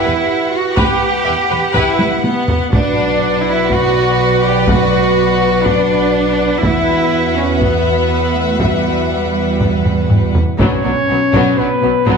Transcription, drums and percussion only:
0.77 taiko
1.74 taiko
1.99 taiko high
2.24 taiko high
2.48 taiko low
2.73 taiko
3.70 taiko
4.68 taiko
5.66 taiko
6.63 taiko
7.61 taiko
8.60 taiko
9.60 taiko
9.85 taiko low-mid
10.10 taiko low-mid
10.35 taiko low
10.59 taiko
11.33 taiko
12.07 taiko

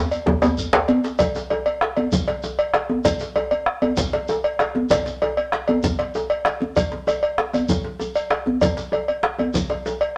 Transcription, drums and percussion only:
0.11 cowbell, shekere
0.26 bombo low, djembe tone, high conga, djembe bass, low conga
0.42 cowbell, djembe tone, high conga, shekere
0.58 high conga, djembe bass, shekere
0.73 bombo rim, cowbell, djembe slap, high conga, djembe bass
0.88 cowbell, djembe slap, high conga
1.04 djembe slap, high conga, shekere
1.19 bombo low, cowbell, low conga, djembe bass, shekere
1.35 djembe slap, high conga, shekere
1.50 cowbell, djembe tone
1.66 cowbell, high conga
1.81 bombo rim, djembe slap
1.97 cowbell, high conga, djembe tone
2.12 bombo low, djembe slap, djembe bass, low conga, shekere
2.28 cowbell, djembe slap
2.43 djembe tone, shekere
2.59 cowbell
2.74 bombo rim, cowbell, djembe slap
2.90 high conga, djembe tone
3.05 bombo low, cowbell, djembe bass, low conga, shekere
3.20 djembe slap, high conga, shekere
3.36 cowbell, djembe tone
3.51 cowbell, high conga
3.66 bombo rim
3.82 cowbell, high conga, djembe tone
3.97 bombo low, djembe slap, low conga, djembe bass, shekere
4.13 cowbell, djembe slap
4.28 djembe tone, shekere
4.44 cowbell
4.59 bombo rim, cowbell, djembe slap
4.75 djembe tone, high conga
4.90 bombo low, cowbell, djembe bass, low conga, shekere
5.06 djembe slap, high conga, shekere
5.22 cowbell, djembe tone
5.37 cowbell, high conga
5.52 bombo rim, djembe slap
5.68 cowbell, high conga, djembe tone
5.83 bombo low, djembe slap, low conga, djembe bass, shekere
5.99 cowbell, djembe slap
6.15 djembe tone, shekere
6.30 cowbell
6.45 bombo rim, cowbell, djembe slap
6.61 djembe tone, high conga
6.76 bombo low, cowbell, djembe slap, high conga, djembe bass, low conga, shekere
6.92 djembe slap, high conga
7.07 cowbell, djembe tone, high conga, shekere
7.23 cowbell
7.38 bombo rim, djembe slap, high conga
7.53 bombo rim, cowbell, djembe slap, djembe tone, high conga, shekere
7.69 bombo low, high conga, djembe bass, low conga, shekere
7.84 djembe slap
7.99 bombo rim, djembe tone, high conga, shekere
8.15 bombo rim, cowbell, shekere
8.30 bombo rim, cowbell, djembe slap
8.46 bombo rim, djembe tone, high conga
8.61 bombo low, cowbell, djembe bass, low conga, shekere
8.77 djembe slap, high conga, shekere
8.92 cowbell, djembe tone
9.08 cowbell, high conga
9.23 bombo rim, djembe slap
9.39 cowbell, djembe tone, high conga
9.54 bombo low, djembe slap, djembe bass, low conga, shekere
9.70 cowbell, djembe slap
9.86 djembe tone, shekere
10.01 cowbell

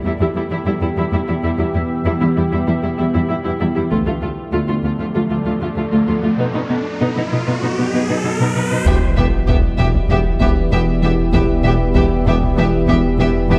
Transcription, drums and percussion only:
3.91 taiko
8.86 taiko
9.48 taiko
9.94 taiko
10.41 taiko
11.33 taiko
11.95 taiko
12.42 taiko
12.88 taiko

